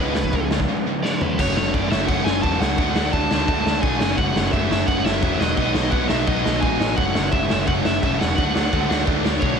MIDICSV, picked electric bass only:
0, 0, Header, 1, 2, 480
1, 0, Start_track
1, 0, Key_signature, 3, "minor"
1, 0, Tempo, 349650
1, 1903, Time_signature, 4, 2, 24, 8
1, 13175, End_track
2, 0, Start_track
2, 0, Title_t, "Picked electric bass"
2, 0, Program_c, 0, 34
2, 0, Note_on_c, 0, 37, 110
2, 153, Note_off_c, 0, 37, 0
2, 227, Note_on_c, 0, 37, 95
2, 404, Note_off_c, 0, 37, 0
2, 458, Note_on_c, 0, 37, 97
2, 638, Note_off_c, 0, 37, 0
2, 694, Note_on_c, 0, 37, 92
2, 876, Note_off_c, 0, 37, 0
2, 1917, Note_on_c, 0, 30, 112
2, 2075, Note_off_c, 0, 30, 0
2, 2159, Note_on_c, 0, 30, 101
2, 2317, Note_off_c, 0, 30, 0
2, 2386, Note_on_c, 0, 30, 94
2, 2548, Note_off_c, 0, 30, 0
2, 2629, Note_on_c, 0, 30, 115
2, 2790, Note_off_c, 0, 30, 0
2, 2857, Note_on_c, 0, 30, 103
2, 3022, Note_off_c, 0, 30, 0
2, 3105, Note_on_c, 0, 30, 101
2, 3268, Note_off_c, 0, 30, 0
2, 3335, Note_on_c, 0, 28, 95
2, 3502, Note_off_c, 0, 28, 0
2, 3584, Note_on_c, 0, 37, 94
2, 3748, Note_off_c, 0, 37, 0
2, 3822, Note_on_c, 0, 38, 115
2, 3986, Note_off_c, 0, 38, 0
2, 4064, Note_on_c, 0, 38, 110
2, 4228, Note_off_c, 0, 38, 0
2, 4301, Note_on_c, 0, 38, 100
2, 4465, Note_off_c, 0, 38, 0
2, 4553, Note_on_c, 0, 38, 96
2, 4714, Note_off_c, 0, 38, 0
2, 4781, Note_on_c, 0, 38, 111
2, 4945, Note_off_c, 0, 38, 0
2, 5016, Note_on_c, 0, 38, 100
2, 5182, Note_off_c, 0, 38, 0
2, 5263, Note_on_c, 0, 35, 102
2, 5427, Note_off_c, 0, 35, 0
2, 5507, Note_on_c, 0, 30, 94
2, 5669, Note_off_c, 0, 30, 0
2, 5735, Note_on_c, 0, 30, 118
2, 5901, Note_off_c, 0, 30, 0
2, 5976, Note_on_c, 0, 30, 102
2, 6142, Note_off_c, 0, 30, 0
2, 6223, Note_on_c, 0, 30, 107
2, 6386, Note_off_c, 0, 30, 0
2, 6457, Note_on_c, 0, 30, 115
2, 6623, Note_off_c, 0, 30, 0
2, 6701, Note_on_c, 0, 30, 96
2, 6865, Note_off_c, 0, 30, 0
2, 6938, Note_on_c, 0, 30, 103
2, 7103, Note_off_c, 0, 30, 0
2, 7176, Note_on_c, 0, 28, 96
2, 7342, Note_off_c, 0, 28, 0
2, 7416, Note_on_c, 0, 28, 90
2, 7581, Note_off_c, 0, 28, 0
2, 7648, Note_on_c, 0, 35, 110
2, 7816, Note_off_c, 0, 35, 0
2, 7887, Note_on_c, 0, 35, 103
2, 8055, Note_off_c, 0, 35, 0
2, 8133, Note_on_c, 0, 35, 93
2, 8299, Note_off_c, 0, 35, 0
2, 8379, Note_on_c, 0, 35, 109
2, 8543, Note_off_c, 0, 35, 0
2, 8608, Note_on_c, 0, 35, 114
2, 8776, Note_off_c, 0, 35, 0
2, 8865, Note_on_c, 0, 35, 98
2, 9027, Note_off_c, 0, 35, 0
2, 9095, Note_on_c, 0, 33, 100
2, 9260, Note_off_c, 0, 33, 0
2, 9341, Note_on_c, 0, 33, 84
2, 9504, Note_off_c, 0, 33, 0
2, 9576, Note_on_c, 0, 30, 104
2, 9740, Note_off_c, 0, 30, 0
2, 9822, Note_on_c, 0, 30, 101
2, 9984, Note_off_c, 0, 30, 0
2, 10057, Note_on_c, 0, 30, 100
2, 10221, Note_off_c, 0, 30, 0
2, 10327, Note_on_c, 0, 30, 105
2, 10480, Note_off_c, 0, 30, 0
2, 10544, Note_on_c, 0, 30, 106
2, 10705, Note_off_c, 0, 30, 0
2, 10799, Note_on_c, 0, 30, 90
2, 10954, Note_off_c, 0, 30, 0
2, 11022, Note_on_c, 0, 28, 103
2, 11184, Note_off_c, 0, 28, 0
2, 11291, Note_on_c, 0, 28, 91
2, 11443, Note_off_c, 0, 28, 0
2, 11509, Note_on_c, 0, 38, 117
2, 11668, Note_off_c, 0, 38, 0
2, 11746, Note_on_c, 0, 38, 103
2, 11906, Note_off_c, 0, 38, 0
2, 11982, Note_on_c, 0, 38, 100
2, 12143, Note_off_c, 0, 38, 0
2, 12225, Note_on_c, 0, 38, 108
2, 12384, Note_off_c, 0, 38, 0
2, 12460, Note_on_c, 0, 38, 96
2, 12621, Note_off_c, 0, 38, 0
2, 12704, Note_on_c, 0, 38, 96
2, 12864, Note_off_c, 0, 38, 0
2, 12935, Note_on_c, 0, 35, 101
2, 13097, Note_off_c, 0, 35, 0
2, 13175, End_track
0, 0, End_of_file